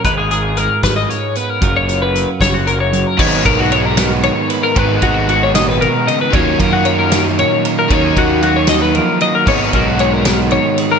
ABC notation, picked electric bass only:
X:1
M:6/8
L:1/8
Q:3/8=76
K:G#dor
V:1 name="Picked electric bass" clef=bass
G,,,3 G,,, z2 | F,,,3 F,,,3 | G,,, B,,,4 z | G,,, G,,,4 z |
D,, F,,4 z | D,, D,,4 z | G,,, B,,,4 z |]